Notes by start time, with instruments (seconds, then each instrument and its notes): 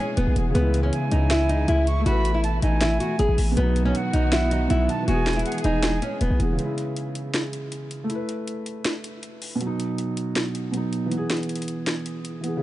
Already playing: string section B2 E3 G#3 G#4, felt piano E3 B3 G#4, flute G#5
0.00 nylon-string guitar C#4
0.17 808-style bass D#1, nylon-string guitar B3, closed hi-hat
0.27 808-style bass B1
0.33 808-style bass E1, felt piano E3 B3, closed hi-hat
0.39 felt piano G#4
0.49 felt piano C#3
0.55 808-style bass C#2, string section C#3 E4, felt piano G#3, nylon-string guitar B3, closed hi-hat
0.60 felt piano E4
0.74 closed hi-hat
0.83 nylon-string guitar C#4
0.93 flute G#5, closed hi-hat
1.12 808-style bass C#2, nylon-string guitar D#4, closed hi-hat
1.30 nylon-string guitar E4, snare, closed hi-hat
1.49 nylon-string guitar D#4, closed hi-hat
1.68 808-style bass C#2, nylon-string guitar E4, closed hi-hat
1.87 flute C#6, closed hi-hat
2.00 felt piano A3
2.06 808-style bass A1, string section B2 E3 A3, felt piano E4, nylon-string guitar F#4, flute B5, closed hi-hat
2.11 felt piano B4
2.25 closed hi-hat
2.34 nylon-string guitar E4
2.44 flute A5, closed hi-hat
2.62 808-style bass A1, nylon-string guitar D#4, flute G#5, closed hi-hat
2.81 nylon-string guitar E4, snare, closed hi-hat
3.00 nylon-string guitar F#4, closed hi-hat
3.19 808-style bass G#1, nylon-string guitar G#4, closed hi-hat
3.29 808-style bass A1
3.38 808-style bass A1, open hi-hat
3.52 felt piano B2
3.57 808-style bass B1, string section D#3 F#3 B3 F#4, felt piano F#3, nylon-string guitar B3, closed hi-hat
3.63 felt piano D#4
3.76 closed hi-hat
3.85 nylon-string guitar C#4
3.94 flute F#5, closed hi-hat
4.13 808-style bass B1, nylon-string guitar D#4, closed hi-hat
4.32 nylon-string guitar E4, snare, closed hi-hat
4.51 nylon-string guitar D#4, closed hi-hat
4.68 808-style bass B1, felt piano B2 F#3, nylon-string guitar E4, closed hi-hat
4.73 felt piano D#4
4.89 flute A5, closed hi-hat
5.02 felt piano E3
5.08 808-style bass E1, string section E3 G#3 G#4, felt piano B3, nylon-string guitar F#4, flute G#5, closed hi-hat
5.14 felt piano G#4
5.27 snare, closed hi-hat
5.33 nylon-string guitar E4, closed hi-hat
5.39 closed hi-hat
5.45 flute F#5, closed hi-hat
5.52 closed hi-hat
5.58 closed hi-hat
5.64 808-style bass E1, nylon-string guitar D#4, flute G#5, closed hi-hat
5.83 snare, closed hi-hat
6.02 nylon-string guitar C#4, closed hi-hat
6.21 808-style bass D#1, nylon-string guitar B3, closed hi-hat
6.30 808-style bass B1
6.37 808-style bass E1, felt piano E3 B3, closed hi-hat
6.43 felt piano G#4
6.53 felt piano C#3
6.58 felt piano G#3, closed hi-hat
6.64 felt piano E4
6.78 closed hi-hat
6.97 closed hi-hat
7.15 closed hi-hat
7.34 snare, closed hi-hat
7.53 closed hi-hat
7.72 closed hi-hat
7.91 closed hi-hat
8.04 felt piano A3
8.10 felt piano E4, closed hi-hat
8.15 felt piano B4
8.29 closed hi-hat
8.48 closed hi-hat
8.66 closed hi-hat
8.85 snare, closed hi-hat
9.04 closed hi-hat
9.23 closed hi-hat
9.42 open hi-hat
9.55 felt piano B2
9.61 felt piano F#3, closed hi-hat
9.67 felt piano D#4
9.80 closed hi-hat
9.98 closed hi-hat
10.17 closed hi-hat
10.36 snare, closed hi-hat
10.55 closed hi-hat
10.72 felt piano B2 F#3, closed hi-hat
10.77 felt piano D#4
10.93 closed hi-hat
11.06 felt piano E3
11.12 felt piano B3, closed hi-hat
11.17 felt piano G#4
11.30 snare, closed hi-hat
11.37 closed hi-hat
11.43 closed hi-hat
11.49 closed hi-hat
11.56 closed hi-hat
11.62 closed hi-hat
11.68 closed hi-hat
11.87 snare, closed hi-hat
12.06 closed hi-hat
12.25 closed hi-hat
12.41 felt piano E3 B3, closed hi-hat
12.46 felt piano G#4
12.57 felt piano C#3